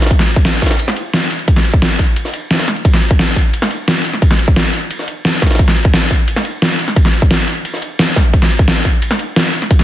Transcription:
0.02 snare, closed hi-hat, ride, shaker
0.06 snare, ride
0.11 kick, closed hi-hat, ride, shaker
0.19 snare, closed hi-hat, shaker
0.28 closed hi-hat, ride
0.36 kick, ride, shaker
0.45 snare, closed hi-hat, ride, shaker
0.53 shaker
0.62 kick, snare, closed hi-hat, ride
0.66 snare, ride
0.71 snare, ride, shaker
0.79 closed hi-hat, ride, shaker
0.88 snare
0.96 closed hi-hat, ride
1.14 snare, closed hi-hat, ride, shaker
1.22 ride, shaker
1.31 closed hi-hat, ride
1.39 closed hi-hat, shaker
1.48 kick, closed hi-hat, ride, shaker
1.56 snare, closed hi-hat, shaker
1.65 closed hi-hat, ride
1.74 kick, shaker
1.82 snare, closed hi-hat, ride, shaker
1.91 snare, closed hi-hat, shaker
1.99 kick, closed hi-hat, ride
2.08 shaker
2.16 closed hi-hat, ride, shaker
2.25 snare
2.34 closed hi-hat, ride
2.51 snare, closed hi-hat, ride, shaker
2.55 snare, ride
2.59 snare, ride, shaker
2.68 snare, closed hi-hat, open hi-hat
2.76 closed hi-hat, shaker
2.85 kick, closed hi-hat, ride, shaker
2.94 snare, closed hi-hat, shaker
3.02 closed hi-hat, ride
3.11 kick, ride, shaker
3.19 snare, closed hi-hat, ride, shaker
3.28 shaker
3.36 kick, closed hi-hat, ride
3.45 shaker
3.54 closed hi-hat, ride, shaker
3.62 snare
3.71 closed hi-hat, ride
3.88 snare, closed hi-hat, ride, shaker
3.96 ride, shaker
4.05 closed hi-hat, ride
4.13 snare, closed hi-hat, shaker
4.22 kick, closed hi-hat, ride, shaker
4.31 snare, closed hi-hat, shaker
4.39 closed hi-hat, ride
4.48 kick, shaker
4.56 snare, closed hi-hat, ride, shaker
4.65 snare, closed hi-hat, shaker
4.73 closed hi-hat, ride
4.82 shaker
4.91 closed hi-hat, ride, shaker
4.99 snare
5.08 closed hi-hat, ride
5.25 snare, closed hi-hat, ride, shaker
5.34 ride, shaker
5.42 kick, snare, closed hi-hat, ride
5.46 snare, ride
5.51 snare, closed hi-hat, ride, shaker
5.55 snare, ride
5.59 kick, closed hi-hat, ride, shaker
5.68 snare, closed hi-hat, shaker
5.76 closed hi-hat, ride
5.85 kick, ride, shaker
5.94 snare, closed hi-hat, ride, shaker
6.02 shaker
6.11 kick, closed hi-hat, ride
6.19 shaker
6.28 closed hi-hat, ride, shaker
6.36 snare
6.45 closed hi-hat, ride
6.62 snare, closed hi-hat, ride, shaker
6.71 ride, shaker
6.79 closed hi-hat, ride
6.88 snare, closed hi-hat, shaker
6.96 kick, closed hi-hat, ride, shaker
7.05 snare, closed hi-hat, shaker
7.14 closed hi-hat, ride
7.22 kick, shaker
7.31 snare, closed hi-hat, ride, shaker
7.39 snare, closed hi-hat, shaker
7.48 closed hi-hat, ride
7.56 shaker
7.65 closed hi-hat, ride, shaker
7.74 snare
7.82 closed hi-hat, ride
7.99 snare, closed hi-hat, ride, shaker
8.08 ride, shaker
8.16 kick, snare, closed hi-hat, ride
8.25 closed hi-hat, shaker
8.33 kick, closed hi-hat, ride, shaker
8.42 snare, closed hi-hat, shaker
8.51 closed hi-hat, ride
8.59 kick, ride, shaker
8.68 snare, closed hi-hat, ride, shaker
8.76 shaker
8.85 kick, closed hi-hat, ride
8.94 shaker
9.02 closed hi-hat, ride, shaker
9.11 snare
9.19 closed hi-hat, ride
9.36 snare, closed hi-hat, ride, shaker
9.45 ride, shaker
9.54 closed hi-hat, ride
9.62 snare, closed hi-hat, shaker
9.71 kick, closed hi-hat, ride, shaker
9.79 snare, closed hi-hat, shaker

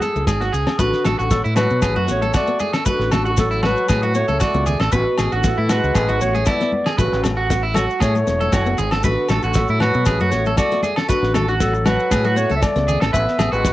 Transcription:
Already playing: G#4
0.01 B3 A4, snare, high conga, maracas
0.16 C#2 A3, maracas
0.27 G#1 G#4, kick, snare, high conga, low conga, low agogo, maracas
0.41 B3 F#4, snare, maracas
0.53 C#2 G#4, muted conga, maracas
0.67 C#4, snare, low agogo
0.79 A1 D3 A3 F#4 B4, kick, snare, muted conga, maracas
0.93 snare
1.04 A1 G#3 A4, snare, muted conga, low agogo, maracas
1.19 A1 D3 F#4, maracas
1.31 F#3 A3 A4, kick, snare, maracas
1.44 A2 E4, maracas
1.56 G#3 F#4 B4, snare, high conga, low agogo, maracas
1.60 F#3
1.70 B2, maracas
1.82 A1 G#4, kick, snare, low agogo, maracas
1.96 F#2 A3 F#4
2.08 A1 A3 B3 C#5, snare, maracas
2.22 A3 A4, maracas
2.34 F#4 D5, kick, snare, high conga, low agogo, maracas
2.38 A3
2.47 B3, maracas
2.59 G#4, muted conga, high conga, maracas
2.73 C#4 A4, snare, low agogo, maracas
2.85 D3 A3 F#4 B4, kick, muted conga, maracas
2.99 A1, snare
3.12 G#3 A4, snare, muted conga, low conga, low agogo, maracas
3.25 D3 F#4, maracas
3.37 F#3 A3 A4, kick, snare, maracas
3.51 E4, maracas
3.63 F#3 G#3 F#4 B4, snare, high conga, low agogo
3.77 maracas
3.89 A2 G#4, kick, snare, muted conga, high conga, low agogo, maracas
4.02 A3 F#4, maracas
4.15 A3 B3 C#5, maracas
4.28 C#2 A3 A4, maracas
4.40 A3 F#4 D5, kick, snare, high conga, low agogo, maracas
4.54 C#2 B3, maracas
4.66 G#4, muted conga, low conga, maracas
4.80 A1 C#4 A4, snare, low agogo, maracas
4.92 A1 B2 B3 F#4 B4, kick, maracas
5.17 A1 G#3 G#4, snare, muted conga, low agogo, maracas
5.32 A1 D3 F#4, maracas
5.44 E3 A3 A4, kick, snare, maracas
5.58 A2 E4
5.69 G#3 F#4 B4, muted steel-string acoustic guitar stroke, snare, high conga, low agogo, maracas
5.84 C#2, maracas
5.95 A1 G#4, kick, snare, low agogo, maracas
6.09 G#1 A3 F#4, maracas
6.21 A1 A3 B3 C#5, maracas
6.35 A3 G#4, maracas
6.46 E4 D5, kick, snare, high conga, low agogo, maracas
6.50 B3
6.61 B3, snare, maracas
6.72 muted conga, high conga
6.86 C#4 G#4, snare, low agogo, maracas
6.98 A1 C#3 A3 F#4 B4, kick, snare, muted conga, maracas
7.12 A1, snare
7.24 G#3, muted clean electric guitar stroke, snare, muted conga, low conga, low agogo, maracas
7.37 F#4
7.50 A3, kick, snare, maracas
7.63 E4
7.74 F#3 G#3 F#4 A4, snare, high conga, low agogo, maracas
7.90 maracas
8.00 A2 A3 G#4 C#5, kick, snare, muted conga, high conga, low agogo, maracas
8.15 A3, maracas
8.27 E1 B3, snare, maracas
8.41 A3 A4, maracas
8.52 F#1 F#4, kick, snare, high conga, low agogo, maracas
8.66 B3, maracas
8.78 G#1 G#4, muted conga, low conga, maracas
8.91 C#4 A4, snare, low agogo, maracas
9.03 A1 D3 A3 F#4 B4, kick, snare, muted conga, maracas
9.29 A1 G#3 A4, snare, low agogo, maracas
9.42 A1 D3 F#4, maracas
9.54 F#3 A3 A4, kick, snare, maracas
9.68 A2 E4, maracas
9.80 F#3 G#3 F#4 B4, snare, high conga, low agogo
9.94 B2, maracas
10.05 A1 G#4, kick, snare, low agogo, maracas
10.20 F#2 A3 F#4, maracas
10.31 A1 A3 B3 C#5, snare, maracas
10.46 A3 A4, maracas
10.57 A3 F#4 D5, kick, snare, high conga, low agogo, maracas
10.71 B3, snare, maracas
10.83 G#4, muted conga, high conga, maracas
10.96 C#4 A4, snare, low agogo, maracas
11.08 D3 A3 F#4 B4, kick, snare, muted conga, maracas
11.22 A1, snare
11.34 G#3 A4, snare, muted conga, low conga, low agogo, maracas
11.48 D3 F#4, maracas
11.60 F#3 A3 A4, kick, snare, maracas
11.73 muted clean electric guitar stroke, maracas
11.86 F#3 G#3 F#4 B4, snare, high conga, low agogo, maracas
12.00 maracas
12.11 A2 G#4, kick, snare, muted conga, high conga, low agogo, maracas
12.25 A3 F#4, maracas
12.36 A3 B3 C#5, maracas
12.50 C#2 A3 A4, maracas
12.56 C#4 E5
12.62 A3 D5, kick, snare, high conga, low agogo, maracas
12.76 C#2 B3, snare, maracas
12.88 G#4, muted conga, low conga, maracas
13.01 A1 C#4 A4, snare, low agogo, maracas
13.13 A1 B3 B4 E5, kick, muted conga, maracas
13.28 snare
13.38 A1 G#3 G#4, snare, low agogo, maracas
13.52 A1 G#3 F#4 B4, maracas
13.65 A3, kick, snare, maracas

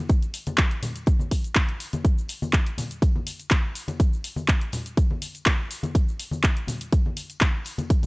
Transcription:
0.09 kick, closed hi-hat, tambourine, shaker
0.22 closed hi-hat, tambourine, shaker
0.34 open hi-hat, tambourine, shaker
0.46 closed hi-hat, tambourine, high conga, shaker
0.58 kick, clap, closed hi-hat, shaker
0.71 closed hi-hat, tambourine
0.83 open hi-hat, tambourine, high conga, low conga, shaker
0.95 closed hi-hat, tambourine, shaker
1.06 kick, closed hi-hat, tambourine, shaker
1.19 tambourine, high conga, shaker
1.31 kick, open hi-hat, tambourine, shaker
1.44 closed hi-hat, tambourine, shaker
1.55 kick, clap, closed hi-hat, tambourine, high conga, shaker
1.69 closed hi-hat, tambourine
1.80 open hi-hat, tambourine, shaker
1.93 closed hi-hat, tambourine, high conga, shaker
2.04 kick, closed hi-hat, tambourine, shaker
2.18 tambourine, shaker
2.28 open hi-hat, tambourine, shaker
2.42 tambourine, high conga, shaker
2.53 kick, clap, closed hi-hat, shaker
2.66 closed hi-hat, tambourine
2.78 open hi-hat, tambourine, high conga, low conga, shaker
2.90 closed hi-hat, tambourine, shaker
3.02 kick, closed hi-hat, tambourine, shaker
3.16 tambourine, high conga
3.27 open hi-hat, tambourine, shaker
3.39 closed hi-hat, tambourine, shaker
3.51 kick, clap, closed hi-hat, tambourine, high conga, shaker
3.64 tambourine
3.75 open hi-hat, tambourine, shaker
3.88 closed hi-hat, tambourine, high conga, shaker
4.00 kick, closed hi-hat, tambourine, shaker
4.13 tambourine, shaker
4.24 open hi-hat, tambourine, shaker
4.36 tambourine, high conga, shaker
4.48 kick, clap, closed hi-hat, shaker
4.61 closed hi-hat, tambourine
4.72 open hi-hat, tambourine, low conga, shaker
4.86 closed hi-hat, tambourine, shaker
4.97 kick, closed hi-hat, tambourine, shaker
5.09 tambourine, high conga
5.22 open hi-hat, tambourine, shaker
5.34 closed hi-hat, tambourine, shaker
5.46 kick, clap, closed hi-hat, tambourine, high conga, shaker
5.59 tambourine
5.71 open hi-hat, tambourine, shaker
5.83 closed hi-hat, tambourine, high conga, shaker
5.95 kick, closed hi-hat, tambourine, shaker
6.08 tambourine, shaker
6.20 open hi-hat, tambourine, shaker
6.31 tambourine, high conga, shaker
6.43 kick, clap, closed hi-hat, shaker
6.56 closed hi-hat, tambourine
6.67 open hi-hat, tambourine, high conga, low conga, shaker
6.81 closed hi-hat, tambourine, shaker
6.92 kick, closed hi-hat, tambourine, shaker
7.05 tambourine, high conga
7.17 open hi-hat, tambourine, shaker
7.30 closed hi-hat, tambourine, shaker
7.41 kick, clap, closed hi-hat, tambourine, high conga, shaker
7.55 tambourine
7.65 open hi-hat, tambourine, shaker
7.78 closed hi-hat, tambourine, high conga, shaker
7.90 kick, closed hi-hat, tambourine, shaker
8.02 closed hi-hat, tambourine, low conga

